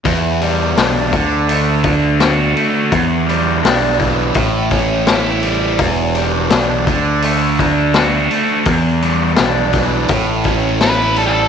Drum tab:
HH |oooooooo|oooooooo|oooooooo|oooooooo|
SD |--o---o-|--o---o-|--o---o-|--o---o-|
BD |o--o-o--|o--ooo--|o--o-o--|o--ooo--|